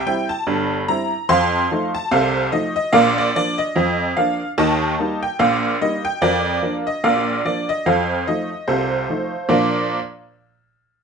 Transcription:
0.06 G3 C4 E4 G5
0.29 A5
0.47 G1 G2
0.88 G3 C4 E4 A#5
1.29 F2 F3 F5 A5 C6
1.71 F3 A3 D#4
1.95 A5
2.11 C2 C3 A4 C5 F5
2.52 F3 A3 D#4 D#5
2.76 D#5
2.93 A#1 A#2 A#4 D5 F5
3.18 D5
3.36 F3 A#3 D4 D5
3.58 D#5
3.76 F2 F3
4.17 F3 A#3 D4 F5
4.58 D#2 D#3 D#5 A5
4.99 G3 A#3 D#4
5.23 G5
5.39 A#1 A#2 F5
5.82 G3 A#3 D#4 D#5
6.05 G5
6.22 F2 F3 F4 A#4 D5
6.62 F3 A#3 D4
6.87 D#5
7.04 A#1 A#2 A#4 D5 F5
7.45 F3 A#3 D4 D5
7.69 D#5
7.86 F2 F3 A4 C5 F5
8.27 F3 A3 D#4 D#5
8.68 C2 C3 F4 A4 C5
9.09 F3 A3 D#4
9.49 A#2 F3 D4 F4 A#4 D5

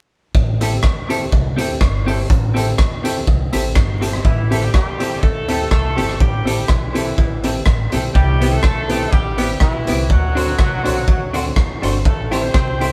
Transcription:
0.35 A1, kick
0.60 C4 E4 G4 A4, closed hi-hat, tambourine
0.83 E2, muted clean electric guitar stroke, kick, cross-stick
1.09 C4 E4 G4 A4, closed hi-hat, tambourine
1.32 C2 G4 A4, kick
1.57 D2 C4 E4 G4 A4, closed hi-hat, tambourine
1.81 G1, kick, cross-stick
2.06 C4 E4 G4 A4, open hi-hat, tambourine
2.30 A1, kick, hi-hat pedal
2.54 C4 E4 G4 A4, closed hi-hat, tambourine
2.78 E2, kick, cross-stick
3.04 C4 E4 G4 A4, closed hi-hat, tambourine
3.27 C2 G4 A4, kick
3.52 A1 C4 E4 G4 A4, closed hi-hat, tambourine
3.75 G1, kick, cross-stick
4.00 C4 E4 G4 A4, closed hi-hat, tambourine
4.13 cross-stick
4.25 A1 E3 E4, kick
4.50 C4 E4 G4 A4, closed hi-hat
4.62 G3 G4
4.73 E2 G3 G4, muted clean electric guitar stroke, kick, cross-stick
4.99 C4 E4 G4 A4, closed hi-hat
5.21 D2 A3 G4 A4, kick
5.48 C4 E4 G4 A4, closed hi-hat
5.71 C2 A3 A4, kick, cross-stick
5.96 G1 C4 E4 G4 A4, closed hi-hat
6.09 cross-stick
6.20 A1 G3 G4, kick
6.45 C4 E4 G4 A4, closed hi-hat
6.68 B1 E3 E4, kick, cross-stick
6.93 C4 E4 G4 A4, closed hi-hat
7.18 A1 G4 A4, kick
7.43 C4 E4 G4 A4, closed hi-hat
7.66 A1, kick, cross-stick
7.92 B1 C4 E4 G4 A4, closed hi-hat
8.14 C2 G3 G4, kick
8.40 B3 C4 E4 G4 B4, closed hi-hat
8.51 A3 A4
8.63 B1, muted clean electric guitar stroke, kick, cross-stick
8.88 B3 C4 E4 G4 B4, closed hi-hat
9.11 A1 G3 G4 B4, kick
9.37 B3 C4 E4 G4 B4, closed hi-hat
9.60 B1 E3 E4, kick, cross-stick
9.87 C2 B3 C4 E4 G4 B4, closed hi-hat
10.10 D2 F#3 F#4, kick
10.35 C4 D4 F#4 A4 C5, closed hi-hat
10.59 C2, kick, cross-stick
10.84 B1 C4 D4 F#4 A4 C5, closed hi-hat
11.07 D2 F#4 A4, kick
11.33 C4 D4 F#4 A4 C5, closed hi-hat
11.56 E2, kick, cross-stick
11.82 G1 C4 D4 F#4 A4 C5, closed hi-hat
12.04 A1 A3 A4, kick
12.31 C4 E4 G4 A4 C5, cross-stick, closed hi-hat
12.42 C4 C5
12.52 C2 C4 C5, muted clean electric guitar stroke, kick, cross-stick
12.79 C4 E4 G4 A4 C5, closed hi-hat

